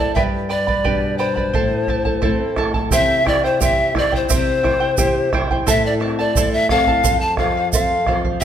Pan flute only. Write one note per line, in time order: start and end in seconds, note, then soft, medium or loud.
0.00 0.14 D5 medium
0.14 0.22 E5 medium
0.50 1.20 D5 medium
1.18 2.57 C5 medium
2.93 3.29 E5 loud
3.28 3.47 D5 loud
3.45 3.62 C5 medium
3.62 3.94 E5 medium
3.98 4.17 D5 medium
4.16 4.31 C5 medium
4.34 5.31 C5 medium
5.69 5.84 E5 medium
5.86 5.93 D5 medium
6.20 6.51 D5 medium
6.53 6.69 E5 medium
6.70 7.18 F5 loud
7.21 7.37 A5 medium
7.38 7.70 F5 medium
7.72 8.21 F5 medium
8.40 8.44 E5 medium